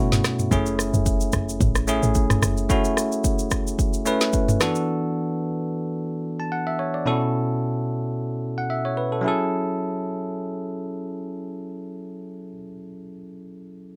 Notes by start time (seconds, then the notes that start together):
Already playing: B2 A3 C#4 E4 F#4
0.12 snare, mid tom, shaker
0.24 cross-stick, snare, shaker
0.39 mid tom, shaker
0.51 F#1 A3 C#4 E4 G#4, kick, shaker
0.66 shaker
0.79 cross-stick, shaker
0.94 F#1, shaker
1.06 kick, shaker
1.21 shaker
1.33 F#1, kick, cross-stick, shaker
1.49 shaker
1.61 A1, kick, shaker
1.75 cross-stick, shaker
1.87 A3 C#4 E4 G#4, shaker
2.03 A1, shaker
2.15 kick, shaker
2.30 cross-stick, mid tom, shaker
2.42 F#1, cross-stick, shaker
2.57 shaker
2.69 A3 C#4 E4 F#4, kick, shaker
2.84 shaker
2.97 cross-stick, shaker
3.12 shaker
3.24 kick, shaker
3.39 shaker
3.51 kick, cross-stick, shaker
3.67 shaker
3.79 kick, shaker
3.94 shaker
4.06 A3 C#4 E4 B4, shaker
4.21 snare, shaker
4.33 kick, shaker
4.48 mid tom, shaker
4.60 E3 B3 D4 F#4 A4, cross-stick, snare, shaker
4.75 shaker
6.40 A5
6.52 F#5
6.67 E5
6.79 C#5
6.94 D5
7.06 B2 C#4 E4 F#4 A4
8.58 F#5
8.70 E5
8.85 C#5
8.97 B4
9.12 A4
9.21 F#3 C#4 E4
9.26 G#4 A4